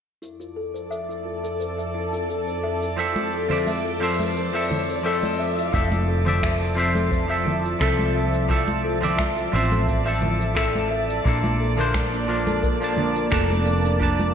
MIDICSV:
0, 0, Header, 1, 8, 480
1, 0, Start_track
1, 0, Key_signature, -1, "major"
1, 0, Tempo, 689655
1, 153, Time_signature, 4, 2, 24, 8
1, 9981, End_track
2, 0, Start_track
2, 0, Title_t, "Synth texture"
2, 0, Program_c, 0, 99
2, 151, Note_on_c, 0, 74, 76
2, 154, Note_on_c, 0, 86, 74
2, 3986, Note_off_c, 0, 74, 0
2, 3991, Note_off_c, 0, 86, 0
2, 3995, Note_on_c, 0, 74, 83
2, 3999, Note_on_c, 0, 86, 79
2, 9981, Note_off_c, 0, 74, 0
2, 9981, Note_off_c, 0, 86, 0
2, 9981, End_track
3, 0, Start_track
3, 0, Title_t, "Analog synth pad"
3, 0, Program_c, 1, 89
3, 146, Note_on_c, 1, 41, 68
3, 150, Note_on_c, 1, 69, 82
3, 3961, Note_off_c, 1, 41, 0
3, 3963, Note_off_c, 1, 69, 0
3, 3995, Note_on_c, 1, 81, 88
3, 3998, Note_on_c, 1, 53, 77
3, 3999, Note_on_c, 1, 76, 72
3, 7807, Note_off_c, 1, 53, 0
3, 7808, Note_off_c, 1, 76, 0
3, 7830, Note_on_c, 1, 58, 76
3, 7832, Note_on_c, 1, 74, 89
3, 9981, Note_off_c, 1, 58, 0
3, 9981, Note_off_c, 1, 74, 0
3, 9981, Note_off_c, 1, 81, 0
3, 9981, End_track
4, 0, Start_track
4, 0, Title_t, "Kalimba"
4, 0, Program_c, 2, 108
4, 153, Note_on_c, 2, 64, 71
4, 266, Note_off_c, 2, 64, 0
4, 277, Note_on_c, 2, 65, 61
4, 386, Note_off_c, 2, 65, 0
4, 392, Note_on_c, 2, 69, 65
4, 506, Note_off_c, 2, 69, 0
4, 516, Note_on_c, 2, 72, 64
4, 579, Note_off_c, 2, 72, 0
4, 631, Note_on_c, 2, 76, 93
4, 700, Note_off_c, 2, 76, 0
4, 758, Note_on_c, 2, 64, 64
4, 861, Note_off_c, 2, 64, 0
4, 872, Note_on_c, 2, 65, 61
4, 941, Note_off_c, 2, 65, 0
4, 999, Note_on_c, 2, 69, 67
4, 1101, Note_off_c, 2, 69, 0
4, 1114, Note_on_c, 2, 72, 86
4, 1227, Note_off_c, 2, 72, 0
4, 1240, Note_on_c, 2, 76, 67
4, 1348, Note_off_c, 2, 76, 0
4, 1354, Note_on_c, 2, 64, 85
4, 1467, Note_off_c, 2, 64, 0
4, 1481, Note_on_c, 2, 65, 67
4, 1541, Note_off_c, 2, 65, 0
4, 1595, Note_on_c, 2, 69, 84
4, 1662, Note_off_c, 2, 69, 0
4, 1719, Note_on_c, 2, 72, 69
4, 1822, Note_off_c, 2, 72, 0
4, 1833, Note_on_c, 2, 76, 90
4, 1947, Note_off_c, 2, 76, 0
4, 1960, Note_on_c, 2, 64, 64
4, 2067, Note_off_c, 2, 64, 0
4, 2074, Note_on_c, 2, 64, 71
4, 2187, Note_off_c, 2, 64, 0
4, 2200, Note_on_c, 2, 65, 65
4, 2308, Note_off_c, 2, 65, 0
4, 2313, Note_on_c, 2, 69, 67
4, 2427, Note_off_c, 2, 69, 0
4, 2439, Note_on_c, 2, 72, 66
4, 2500, Note_off_c, 2, 72, 0
4, 2556, Note_on_c, 2, 76, 96
4, 2622, Note_off_c, 2, 76, 0
4, 2681, Note_on_c, 2, 64, 67
4, 2782, Note_off_c, 2, 64, 0
4, 2796, Note_on_c, 2, 65, 61
4, 2863, Note_off_c, 2, 65, 0
4, 2923, Note_on_c, 2, 69, 65
4, 3023, Note_off_c, 2, 69, 0
4, 3035, Note_on_c, 2, 72, 91
4, 3148, Note_off_c, 2, 72, 0
4, 3163, Note_on_c, 2, 76, 71
4, 3269, Note_off_c, 2, 76, 0
4, 3276, Note_on_c, 2, 64, 97
4, 3388, Note_off_c, 2, 64, 0
4, 3403, Note_on_c, 2, 65, 69
4, 3462, Note_off_c, 2, 65, 0
4, 3518, Note_on_c, 2, 69, 87
4, 3584, Note_off_c, 2, 69, 0
4, 3755, Note_on_c, 2, 76, 93
4, 3868, Note_off_c, 2, 76, 0
4, 3880, Note_on_c, 2, 64, 68
4, 3985, Note_off_c, 2, 64, 0
4, 3994, Note_on_c, 2, 64, 71
4, 4107, Note_off_c, 2, 64, 0
4, 4121, Note_on_c, 2, 65, 64
4, 4228, Note_off_c, 2, 65, 0
4, 4232, Note_on_c, 2, 69, 66
4, 4346, Note_off_c, 2, 69, 0
4, 4359, Note_on_c, 2, 72, 68
4, 4421, Note_off_c, 2, 72, 0
4, 4474, Note_on_c, 2, 76, 98
4, 4542, Note_off_c, 2, 76, 0
4, 4598, Note_on_c, 2, 64, 67
4, 4701, Note_off_c, 2, 64, 0
4, 4713, Note_on_c, 2, 65, 67
4, 4781, Note_off_c, 2, 65, 0
4, 4838, Note_on_c, 2, 69, 68
4, 4941, Note_off_c, 2, 69, 0
4, 4951, Note_on_c, 2, 72, 85
4, 5066, Note_off_c, 2, 72, 0
4, 5079, Note_on_c, 2, 76, 71
4, 5187, Note_off_c, 2, 76, 0
4, 5193, Note_on_c, 2, 64, 85
4, 5306, Note_off_c, 2, 64, 0
4, 5319, Note_on_c, 2, 65, 69
4, 5381, Note_off_c, 2, 65, 0
4, 5434, Note_on_c, 2, 69, 91
4, 5502, Note_off_c, 2, 69, 0
4, 5672, Note_on_c, 2, 76, 93
4, 5786, Note_off_c, 2, 76, 0
4, 5799, Note_on_c, 2, 64, 70
4, 5902, Note_off_c, 2, 64, 0
4, 5911, Note_on_c, 2, 64, 80
4, 6025, Note_off_c, 2, 64, 0
4, 6040, Note_on_c, 2, 65, 68
4, 6147, Note_off_c, 2, 65, 0
4, 6154, Note_on_c, 2, 69, 71
4, 6267, Note_off_c, 2, 69, 0
4, 6389, Note_on_c, 2, 76, 95
4, 6459, Note_off_c, 2, 76, 0
4, 6518, Note_on_c, 2, 64, 71
4, 6621, Note_off_c, 2, 64, 0
4, 6631, Note_on_c, 2, 65, 66
4, 6700, Note_off_c, 2, 65, 0
4, 6761, Note_on_c, 2, 69, 67
4, 6862, Note_off_c, 2, 69, 0
4, 6874, Note_on_c, 2, 72, 89
4, 6987, Note_off_c, 2, 72, 0
4, 7001, Note_on_c, 2, 76, 73
4, 7108, Note_off_c, 2, 76, 0
4, 7113, Note_on_c, 2, 64, 97
4, 7227, Note_off_c, 2, 64, 0
4, 7238, Note_on_c, 2, 65, 71
4, 7300, Note_off_c, 2, 65, 0
4, 7352, Note_on_c, 2, 69, 90
4, 7421, Note_off_c, 2, 69, 0
4, 7479, Note_on_c, 2, 72, 72
4, 7581, Note_off_c, 2, 72, 0
4, 7591, Note_on_c, 2, 76, 92
4, 7706, Note_off_c, 2, 76, 0
4, 7717, Note_on_c, 2, 64, 65
4, 7826, Note_off_c, 2, 64, 0
4, 7832, Note_on_c, 2, 62, 79
4, 7946, Note_off_c, 2, 62, 0
4, 7959, Note_on_c, 2, 65, 69
4, 8067, Note_off_c, 2, 65, 0
4, 8073, Note_on_c, 2, 69, 71
4, 8187, Note_off_c, 2, 69, 0
4, 8201, Note_on_c, 2, 70, 72
4, 8261, Note_off_c, 2, 70, 0
4, 8312, Note_on_c, 2, 74, 98
4, 8381, Note_off_c, 2, 74, 0
4, 8439, Note_on_c, 2, 62, 73
4, 8541, Note_off_c, 2, 62, 0
4, 8554, Note_on_c, 2, 65, 68
4, 8621, Note_off_c, 2, 65, 0
4, 8678, Note_on_c, 2, 69, 70
4, 8781, Note_off_c, 2, 69, 0
4, 8790, Note_on_c, 2, 70, 100
4, 8905, Note_off_c, 2, 70, 0
4, 8919, Note_on_c, 2, 74, 72
4, 9027, Note_off_c, 2, 74, 0
4, 9030, Note_on_c, 2, 62, 96
4, 9145, Note_off_c, 2, 62, 0
4, 9156, Note_on_c, 2, 65, 73
4, 9219, Note_off_c, 2, 65, 0
4, 9271, Note_on_c, 2, 69, 91
4, 9340, Note_off_c, 2, 69, 0
4, 9398, Note_on_c, 2, 70, 73
4, 9501, Note_off_c, 2, 70, 0
4, 9510, Note_on_c, 2, 74, 94
4, 9625, Note_off_c, 2, 74, 0
4, 9636, Note_on_c, 2, 62, 72
4, 9739, Note_off_c, 2, 62, 0
4, 9747, Note_on_c, 2, 62, 80
4, 9864, Note_off_c, 2, 62, 0
4, 9874, Note_on_c, 2, 65, 64
4, 9981, Note_off_c, 2, 65, 0
4, 9981, End_track
5, 0, Start_track
5, 0, Title_t, "Clean electric guitar"
5, 0, Program_c, 3, 27
5, 2063, Note_on_c, 3, 53, 72
5, 2071, Note_on_c, 3, 60, 69
5, 2081, Note_on_c, 3, 76, 64
5, 2088, Note_on_c, 3, 69, 77
5, 2404, Note_off_c, 3, 53, 0
5, 2408, Note_off_c, 3, 60, 0
5, 2413, Note_off_c, 3, 76, 0
5, 2417, Note_off_c, 3, 69, 0
5, 2426, Note_on_c, 3, 53, 69
5, 2435, Note_on_c, 3, 60, 62
5, 2442, Note_on_c, 3, 76, 59
5, 2453, Note_on_c, 3, 74, 74
5, 2759, Note_off_c, 3, 53, 0
5, 2763, Note_off_c, 3, 60, 0
5, 2767, Note_off_c, 3, 76, 0
5, 2772, Note_off_c, 3, 74, 0
5, 2784, Note_on_c, 3, 53, 87
5, 2792, Note_on_c, 3, 60, 79
5, 2803, Note_on_c, 3, 76, 76
5, 2809, Note_on_c, 3, 72, 99
5, 3125, Note_off_c, 3, 53, 0
5, 3128, Note_off_c, 3, 60, 0
5, 3134, Note_off_c, 3, 76, 0
5, 3137, Note_off_c, 3, 72, 0
5, 3150, Note_on_c, 3, 53, 63
5, 3159, Note_on_c, 3, 60, 60
5, 3168, Note_on_c, 3, 76, 61
5, 3175, Note_on_c, 3, 69, 75
5, 3481, Note_off_c, 3, 53, 0
5, 3485, Note_off_c, 3, 60, 0
5, 3490, Note_off_c, 3, 76, 0
5, 3494, Note_off_c, 3, 69, 0
5, 3503, Note_on_c, 3, 53, 86
5, 3512, Note_on_c, 3, 60, 74
5, 3520, Note_on_c, 3, 76, 74
5, 3530, Note_on_c, 3, 69, 90
5, 3960, Note_off_c, 3, 53, 0
5, 3965, Note_off_c, 3, 60, 0
5, 3969, Note_off_c, 3, 76, 0
5, 3974, Note_off_c, 3, 69, 0
5, 3982, Note_on_c, 3, 53, 73
5, 3992, Note_on_c, 3, 60, 65
5, 4000, Note_on_c, 3, 76, 66
5, 4008, Note_on_c, 3, 69, 74
5, 4324, Note_off_c, 3, 53, 0
5, 4328, Note_off_c, 3, 60, 0
5, 4333, Note_off_c, 3, 76, 0
5, 4336, Note_off_c, 3, 69, 0
5, 4350, Note_on_c, 3, 53, 63
5, 4359, Note_on_c, 3, 60, 57
5, 4370, Note_on_c, 3, 76, 64
5, 4378, Note_on_c, 3, 74, 77
5, 4681, Note_off_c, 3, 53, 0
5, 4685, Note_off_c, 3, 60, 0
5, 4691, Note_off_c, 3, 76, 0
5, 4695, Note_off_c, 3, 74, 0
5, 4698, Note_on_c, 3, 53, 88
5, 4707, Note_on_c, 3, 60, 84
5, 4718, Note_on_c, 3, 76, 77
5, 4727, Note_on_c, 3, 72, 93
5, 5041, Note_off_c, 3, 53, 0
5, 5046, Note_off_c, 3, 60, 0
5, 5051, Note_off_c, 3, 76, 0
5, 5056, Note_off_c, 3, 72, 0
5, 5066, Note_on_c, 3, 53, 67
5, 5076, Note_on_c, 3, 60, 62
5, 5084, Note_on_c, 3, 76, 59
5, 5091, Note_on_c, 3, 69, 69
5, 5399, Note_off_c, 3, 53, 0
5, 5404, Note_off_c, 3, 60, 0
5, 5408, Note_off_c, 3, 76, 0
5, 5411, Note_off_c, 3, 69, 0
5, 5423, Note_on_c, 3, 53, 81
5, 5432, Note_on_c, 3, 60, 74
5, 5440, Note_on_c, 3, 76, 77
5, 5450, Note_on_c, 3, 69, 88
5, 5881, Note_off_c, 3, 53, 0
5, 5885, Note_off_c, 3, 60, 0
5, 5889, Note_off_c, 3, 76, 0
5, 5894, Note_off_c, 3, 69, 0
5, 5905, Note_on_c, 3, 53, 77
5, 5913, Note_on_c, 3, 60, 69
5, 5922, Note_on_c, 3, 76, 69
5, 5931, Note_on_c, 3, 69, 83
5, 6245, Note_off_c, 3, 53, 0
5, 6249, Note_off_c, 3, 60, 0
5, 6253, Note_off_c, 3, 76, 0
5, 6258, Note_off_c, 3, 69, 0
5, 6269, Note_on_c, 3, 53, 68
5, 6276, Note_on_c, 3, 60, 63
5, 6287, Note_on_c, 3, 76, 62
5, 6294, Note_on_c, 3, 74, 77
5, 6600, Note_off_c, 3, 53, 0
5, 6604, Note_off_c, 3, 60, 0
5, 6609, Note_off_c, 3, 76, 0
5, 6613, Note_off_c, 3, 74, 0
5, 6625, Note_on_c, 3, 53, 93
5, 6632, Note_on_c, 3, 60, 80
5, 6641, Note_on_c, 3, 76, 78
5, 6650, Note_on_c, 3, 72, 92
5, 6965, Note_off_c, 3, 53, 0
5, 6968, Note_off_c, 3, 60, 0
5, 6973, Note_off_c, 3, 76, 0
5, 6978, Note_off_c, 3, 72, 0
5, 6990, Note_on_c, 3, 53, 67
5, 6999, Note_on_c, 3, 60, 65
5, 7008, Note_on_c, 3, 76, 63
5, 7017, Note_on_c, 3, 69, 77
5, 7321, Note_off_c, 3, 53, 0
5, 7325, Note_off_c, 3, 60, 0
5, 7330, Note_off_c, 3, 76, 0
5, 7334, Note_off_c, 3, 69, 0
5, 7342, Note_on_c, 3, 53, 81
5, 7350, Note_on_c, 3, 60, 82
5, 7359, Note_on_c, 3, 76, 81
5, 7368, Note_on_c, 3, 69, 95
5, 7800, Note_off_c, 3, 53, 0
5, 7804, Note_off_c, 3, 60, 0
5, 7808, Note_off_c, 3, 76, 0
5, 7813, Note_off_c, 3, 69, 0
5, 7824, Note_on_c, 3, 53, 76
5, 7835, Note_on_c, 3, 58, 70
5, 7843, Note_on_c, 3, 62, 68
5, 7853, Note_on_c, 3, 69, 83
5, 8165, Note_off_c, 3, 53, 0
5, 8170, Note_off_c, 3, 58, 0
5, 8174, Note_off_c, 3, 62, 0
5, 8179, Note_off_c, 3, 69, 0
5, 8191, Note_on_c, 3, 53, 70
5, 8201, Note_on_c, 3, 58, 63
5, 8210, Note_on_c, 3, 62, 65
5, 8217, Note_on_c, 3, 72, 75
5, 8521, Note_off_c, 3, 53, 0
5, 8526, Note_off_c, 3, 58, 0
5, 8531, Note_off_c, 3, 62, 0
5, 8534, Note_off_c, 3, 72, 0
5, 8545, Note_on_c, 3, 53, 91
5, 8554, Note_on_c, 3, 58, 77
5, 8562, Note_on_c, 3, 62, 79
5, 8885, Note_off_c, 3, 53, 0
5, 8889, Note_off_c, 3, 58, 0
5, 8893, Note_off_c, 3, 62, 0
5, 8911, Note_on_c, 3, 53, 71
5, 8919, Note_on_c, 3, 58, 62
5, 8931, Note_on_c, 3, 62, 61
5, 8937, Note_on_c, 3, 81, 74
5, 9242, Note_off_c, 3, 53, 0
5, 9246, Note_off_c, 3, 58, 0
5, 9251, Note_off_c, 3, 62, 0
5, 9255, Note_off_c, 3, 81, 0
5, 9260, Note_on_c, 3, 53, 81
5, 9270, Note_on_c, 3, 58, 75
5, 9277, Note_on_c, 3, 62, 78
5, 9286, Note_on_c, 3, 81, 97
5, 9719, Note_off_c, 3, 53, 0
5, 9724, Note_off_c, 3, 58, 0
5, 9728, Note_off_c, 3, 62, 0
5, 9732, Note_off_c, 3, 81, 0
5, 9739, Note_on_c, 3, 53, 72
5, 9750, Note_on_c, 3, 58, 67
5, 9756, Note_on_c, 3, 62, 67
5, 9765, Note_on_c, 3, 81, 80
5, 9981, Note_off_c, 3, 53, 0
5, 9981, Note_off_c, 3, 58, 0
5, 9981, Note_off_c, 3, 62, 0
5, 9981, Note_off_c, 3, 81, 0
5, 9981, End_track
6, 0, Start_track
6, 0, Title_t, "Fretless electric bass"
6, 0, Program_c, 4, 35
6, 3991, Note_on_c, 4, 29, 96
6, 5391, Note_off_c, 4, 29, 0
6, 5433, Note_on_c, 4, 36, 82
6, 6592, Note_off_c, 4, 36, 0
6, 6634, Note_on_c, 4, 33, 84
6, 7792, Note_off_c, 4, 33, 0
6, 7833, Note_on_c, 4, 34, 92
6, 9231, Note_off_c, 4, 34, 0
6, 9271, Note_on_c, 4, 29, 88
6, 9981, Note_off_c, 4, 29, 0
6, 9981, End_track
7, 0, Start_track
7, 0, Title_t, "Riser"
7, 0, Program_c, 5, 103
7, 150, Note_on_c, 5, 60, 60
7, 3991, Note_off_c, 5, 60, 0
7, 9981, End_track
8, 0, Start_track
8, 0, Title_t, "Drums"
8, 158, Note_on_c, 9, 69, 46
8, 228, Note_off_c, 9, 69, 0
8, 285, Note_on_c, 9, 69, 31
8, 354, Note_off_c, 9, 69, 0
8, 526, Note_on_c, 9, 69, 56
8, 596, Note_off_c, 9, 69, 0
8, 640, Note_on_c, 9, 69, 46
8, 709, Note_off_c, 9, 69, 0
8, 769, Note_on_c, 9, 69, 28
8, 839, Note_off_c, 9, 69, 0
8, 1007, Note_on_c, 9, 69, 61
8, 1077, Note_off_c, 9, 69, 0
8, 1120, Note_on_c, 9, 69, 48
8, 1190, Note_off_c, 9, 69, 0
8, 1248, Note_on_c, 9, 69, 28
8, 1317, Note_off_c, 9, 69, 0
8, 1488, Note_on_c, 9, 69, 57
8, 1557, Note_off_c, 9, 69, 0
8, 1602, Note_on_c, 9, 69, 48
8, 1672, Note_off_c, 9, 69, 0
8, 1727, Note_on_c, 9, 69, 26
8, 1797, Note_off_c, 9, 69, 0
8, 1967, Note_on_c, 9, 69, 56
8, 2036, Note_off_c, 9, 69, 0
8, 2082, Note_on_c, 9, 69, 51
8, 2151, Note_off_c, 9, 69, 0
8, 2198, Note_on_c, 9, 63, 87
8, 2207, Note_on_c, 9, 69, 30
8, 2268, Note_off_c, 9, 63, 0
8, 2277, Note_off_c, 9, 69, 0
8, 2436, Note_on_c, 9, 64, 68
8, 2446, Note_on_c, 9, 69, 62
8, 2506, Note_off_c, 9, 64, 0
8, 2516, Note_off_c, 9, 69, 0
8, 2552, Note_on_c, 9, 63, 66
8, 2561, Note_on_c, 9, 69, 53
8, 2622, Note_off_c, 9, 63, 0
8, 2630, Note_off_c, 9, 69, 0
8, 2687, Note_on_c, 9, 69, 31
8, 2757, Note_off_c, 9, 69, 0
8, 2920, Note_on_c, 9, 63, 80
8, 2927, Note_on_c, 9, 69, 63
8, 2990, Note_off_c, 9, 63, 0
8, 2996, Note_off_c, 9, 69, 0
8, 3041, Note_on_c, 9, 69, 53
8, 3111, Note_off_c, 9, 69, 0
8, 3168, Note_on_c, 9, 69, 31
8, 3237, Note_off_c, 9, 69, 0
8, 3275, Note_on_c, 9, 63, 67
8, 3282, Note_on_c, 9, 64, 83
8, 3344, Note_off_c, 9, 63, 0
8, 3351, Note_off_c, 9, 64, 0
8, 3408, Note_on_c, 9, 69, 62
8, 3478, Note_off_c, 9, 69, 0
8, 3523, Note_on_c, 9, 69, 54
8, 3593, Note_off_c, 9, 69, 0
8, 3641, Note_on_c, 9, 63, 81
8, 3650, Note_on_c, 9, 69, 32
8, 3710, Note_off_c, 9, 63, 0
8, 3719, Note_off_c, 9, 69, 0
8, 3889, Note_on_c, 9, 69, 64
8, 3959, Note_off_c, 9, 69, 0
8, 3991, Note_on_c, 9, 36, 97
8, 4002, Note_on_c, 9, 69, 49
8, 4060, Note_off_c, 9, 36, 0
8, 4071, Note_off_c, 9, 69, 0
8, 4119, Note_on_c, 9, 63, 87
8, 4128, Note_on_c, 9, 69, 32
8, 4189, Note_off_c, 9, 63, 0
8, 4198, Note_off_c, 9, 69, 0
8, 4359, Note_on_c, 9, 64, 79
8, 4368, Note_on_c, 9, 69, 64
8, 4429, Note_off_c, 9, 64, 0
8, 4438, Note_off_c, 9, 69, 0
8, 4471, Note_on_c, 9, 36, 97
8, 4473, Note_on_c, 9, 63, 54
8, 4477, Note_on_c, 9, 26, 98
8, 4484, Note_on_c, 9, 69, 51
8, 4540, Note_off_c, 9, 36, 0
8, 4542, Note_off_c, 9, 63, 0
8, 4547, Note_off_c, 9, 26, 0
8, 4553, Note_off_c, 9, 69, 0
8, 4609, Note_on_c, 9, 69, 31
8, 4679, Note_off_c, 9, 69, 0
8, 4840, Note_on_c, 9, 63, 79
8, 4848, Note_on_c, 9, 69, 63
8, 4909, Note_off_c, 9, 63, 0
8, 4917, Note_off_c, 9, 69, 0
8, 4950, Note_on_c, 9, 36, 95
8, 4961, Note_on_c, 9, 69, 58
8, 5020, Note_off_c, 9, 36, 0
8, 5030, Note_off_c, 9, 69, 0
8, 5087, Note_on_c, 9, 69, 34
8, 5157, Note_off_c, 9, 69, 0
8, 5187, Note_on_c, 9, 63, 59
8, 5198, Note_on_c, 9, 64, 87
8, 5257, Note_off_c, 9, 63, 0
8, 5268, Note_off_c, 9, 64, 0
8, 5327, Note_on_c, 9, 69, 63
8, 5397, Note_off_c, 9, 69, 0
8, 5430, Note_on_c, 9, 36, 101
8, 5435, Note_on_c, 9, 26, 96
8, 5442, Note_on_c, 9, 69, 54
8, 5500, Note_off_c, 9, 36, 0
8, 5505, Note_off_c, 9, 26, 0
8, 5511, Note_off_c, 9, 69, 0
8, 5559, Note_on_c, 9, 63, 72
8, 5566, Note_on_c, 9, 69, 29
8, 5629, Note_off_c, 9, 63, 0
8, 5635, Note_off_c, 9, 69, 0
8, 5804, Note_on_c, 9, 69, 60
8, 5874, Note_off_c, 9, 69, 0
8, 5911, Note_on_c, 9, 36, 104
8, 5917, Note_on_c, 9, 69, 52
8, 5981, Note_off_c, 9, 36, 0
8, 5986, Note_off_c, 9, 69, 0
8, 6039, Note_on_c, 9, 63, 88
8, 6045, Note_on_c, 9, 69, 34
8, 6109, Note_off_c, 9, 63, 0
8, 6114, Note_off_c, 9, 69, 0
8, 6284, Note_on_c, 9, 64, 68
8, 6286, Note_on_c, 9, 69, 67
8, 6354, Note_off_c, 9, 64, 0
8, 6356, Note_off_c, 9, 69, 0
8, 6392, Note_on_c, 9, 36, 101
8, 6393, Note_on_c, 9, 26, 99
8, 6396, Note_on_c, 9, 63, 67
8, 6400, Note_on_c, 9, 69, 56
8, 6462, Note_off_c, 9, 36, 0
8, 6463, Note_off_c, 9, 26, 0
8, 6466, Note_off_c, 9, 63, 0
8, 6469, Note_off_c, 9, 69, 0
8, 6528, Note_on_c, 9, 69, 31
8, 6597, Note_off_c, 9, 69, 0
8, 6763, Note_on_c, 9, 63, 77
8, 6767, Note_on_c, 9, 69, 65
8, 6832, Note_off_c, 9, 63, 0
8, 6837, Note_off_c, 9, 69, 0
8, 6872, Note_on_c, 9, 36, 98
8, 6882, Note_on_c, 9, 69, 58
8, 6941, Note_off_c, 9, 36, 0
8, 6951, Note_off_c, 9, 69, 0
8, 7006, Note_on_c, 9, 69, 34
8, 7076, Note_off_c, 9, 69, 0
8, 7112, Note_on_c, 9, 63, 60
8, 7112, Note_on_c, 9, 64, 80
8, 7182, Note_off_c, 9, 63, 0
8, 7182, Note_off_c, 9, 64, 0
8, 7246, Note_on_c, 9, 69, 64
8, 7315, Note_off_c, 9, 69, 0
8, 7352, Note_on_c, 9, 36, 101
8, 7354, Note_on_c, 9, 26, 99
8, 7360, Note_on_c, 9, 69, 58
8, 7422, Note_off_c, 9, 36, 0
8, 7424, Note_off_c, 9, 26, 0
8, 7430, Note_off_c, 9, 69, 0
8, 7484, Note_on_c, 9, 63, 81
8, 7488, Note_on_c, 9, 69, 32
8, 7554, Note_off_c, 9, 63, 0
8, 7558, Note_off_c, 9, 69, 0
8, 7726, Note_on_c, 9, 69, 58
8, 7796, Note_off_c, 9, 69, 0
8, 7832, Note_on_c, 9, 36, 106
8, 7840, Note_on_c, 9, 69, 56
8, 7902, Note_off_c, 9, 36, 0
8, 7909, Note_off_c, 9, 69, 0
8, 7960, Note_on_c, 9, 63, 91
8, 7967, Note_on_c, 9, 69, 34
8, 8030, Note_off_c, 9, 63, 0
8, 8036, Note_off_c, 9, 69, 0
8, 8195, Note_on_c, 9, 64, 65
8, 8206, Note_on_c, 9, 69, 69
8, 8265, Note_off_c, 9, 64, 0
8, 8276, Note_off_c, 9, 69, 0
8, 8312, Note_on_c, 9, 36, 102
8, 8312, Note_on_c, 9, 63, 57
8, 8313, Note_on_c, 9, 26, 98
8, 8319, Note_on_c, 9, 69, 54
8, 8381, Note_off_c, 9, 36, 0
8, 8382, Note_off_c, 9, 63, 0
8, 8383, Note_off_c, 9, 26, 0
8, 8389, Note_off_c, 9, 69, 0
8, 8445, Note_on_c, 9, 69, 32
8, 8515, Note_off_c, 9, 69, 0
8, 8679, Note_on_c, 9, 63, 91
8, 8684, Note_on_c, 9, 69, 69
8, 8749, Note_off_c, 9, 63, 0
8, 8754, Note_off_c, 9, 69, 0
8, 8791, Note_on_c, 9, 36, 100
8, 8797, Note_on_c, 9, 69, 58
8, 8861, Note_off_c, 9, 36, 0
8, 8866, Note_off_c, 9, 69, 0
8, 8923, Note_on_c, 9, 69, 34
8, 8992, Note_off_c, 9, 69, 0
8, 9025, Note_on_c, 9, 63, 68
8, 9032, Note_on_c, 9, 64, 78
8, 9095, Note_off_c, 9, 63, 0
8, 9102, Note_off_c, 9, 64, 0
8, 9160, Note_on_c, 9, 69, 67
8, 9230, Note_off_c, 9, 69, 0
8, 9268, Note_on_c, 9, 26, 92
8, 9270, Note_on_c, 9, 36, 112
8, 9275, Note_on_c, 9, 69, 56
8, 9338, Note_off_c, 9, 26, 0
8, 9340, Note_off_c, 9, 36, 0
8, 9344, Note_off_c, 9, 69, 0
8, 9397, Note_on_c, 9, 63, 81
8, 9403, Note_on_c, 9, 69, 31
8, 9467, Note_off_c, 9, 63, 0
8, 9473, Note_off_c, 9, 69, 0
8, 9641, Note_on_c, 9, 69, 62
8, 9711, Note_off_c, 9, 69, 0
8, 9750, Note_on_c, 9, 36, 100
8, 9755, Note_on_c, 9, 69, 53
8, 9819, Note_off_c, 9, 36, 0
8, 9824, Note_off_c, 9, 69, 0
8, 9879, Note_on_c, 9, 63, 86
8, 9881, Note_on_c, 9, 69, 34
8, 9948, Note_off_c, 9, 63, 0
8, 9951, Note_off_c, 9, 69, 0
8, 9981, End_track
0, 0, End_of_file